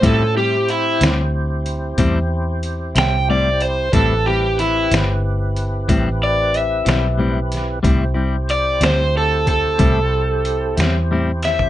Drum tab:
HH |x---x-x---x-x---x-x---x-|x---x-x---x-x---x-x---x-|x---x-x---x-x---x-x---x-|
SD |------o-----------o-----|----o-o-----------o---o-|------o-----------o---o-|
FT |------------------------|------------------------|-----------------------o|
BD |o-----------o-----------|o-----------o-----------|o---------o-o-----------|